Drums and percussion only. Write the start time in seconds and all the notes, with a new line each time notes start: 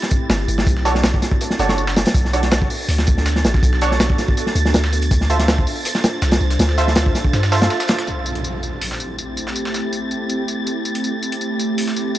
0.02 snare
0.11 kick, closed hi-hat, tambourine
0.30 snare, closed hi-hat, tambourine
0.48 closed hi-hat, tambourine
0.58 snare
0.67 kick, closed hi-hat, tambourine
0.76 snare
0.85 snare, closed hi-hat, tambourine
0.95 snare
1.04 snare, closed hi-hat, tambourine
1.14 kick
1.22 snare, closed hi-hat, tambourine
1.31 kick
1.41 closed hi-hat, tambourine
1.50 snare
1.59 closed hi-hat, tambourine
1.69 snare
1.78 tambourine
1.87 snare
1.96 snare, closed hi-hat, tambourine
2.05 snare, closed hi-hat
2.14 kick, closed hi-hat, tambourine
2.25 snare
2.33 closed hi-hat, tambourine
2.43 snare, closed hi-hat
2.52 snare, closed hi-hat, tambourine
2.62 kick
2.70 open hi-hat, tambourine
2.89 closed hi-hat, open hi-hat
2.98 snare
3.07 kick, closed hi-hat, tambourine
3.18 snare
3.26 snare, closed hi-hat, tambourine
3.36 snare
3.44 snare, closed hi-hat, tambourine
3.54 kick, snare
3.63 kick, closed hi-hat, tambourine
3.73 snare
3.81 snare, closed hi-hat, tambourine
3.91 snare
4.00 snare, closed hi-hat, tambourine
4.10 kick
4.18 snare, closed hi-hat, tambourine
4.28 kick
4.37 closed hi-hat, tambourine
4.47 snare
4.56 closed hi-hat, tambourine
4.66 snare
4.74 snare, closed hi-hat, tambourine
4.84 snare
4.93 closed hi-hat, tambourine
5.02 closed hi-hat
5.11 kick, closed hi-hat, tambourine
5.21 snare
5.30 closed hi-hat, tambourine
5.39 snare, closed hi-hat
5.48 snare, closed hi-hat, tambourine
5.58 kick
5.67 open hi-hat, tambourine
5.85 closed hi-hat, open hi-hat
5.95 snare
6.04 snare, closed hi-hat, tambourine
6.22 snare, closed hi-hat, tambourine
6.32 snare, closed hi-hat
6.41 tambourine
6.50 snare, closed hi-hat
6.59 snare, closed hi-hat, tambourine
6.69 snare
6.78 snare, closed hi-hat, tambourine
6.88 snare
6.96 snare, closed hi-hat, tambourine
7.06 kick
7.15 snare, closed hi-hat, tambourine
7.24 kick
7.33 snare, tambourine
7.43 snare, tambourine
7.52 snare, open hi-hat, tambourine
7.62 snare, closed hi-hat
7.70 snare, tambourine
7.80 snare, tambourine
7.88 snare, closed hi-hat, tambourine
7.99 snare, tambourine
8.07 tambourine
8.26 tambourine
8.35 closed hi-hat
8.44 tambourine
8.63 tambourine
8.81 open hi-hat
8.91 snare
9.00 tambourine
9.18 tambourine
9.37 tambourine
9.47 snare
9.56 tambourine
9.65 snare
9.74 snare, tambourine
9.93 tambourine
10.11 tambourine
10.29 tambourine
10.48 tambourine
10.67 tambourine
10.85 tambourine
10.95 closed hi-hat
11.04 tambourine
11.22 tambourine
11.32 closed hi-hat
11.41 tambourine
11.59 tambourine
11.78 open hi-hat
11.88 snare
11.96 tambourine
12.15 tambourine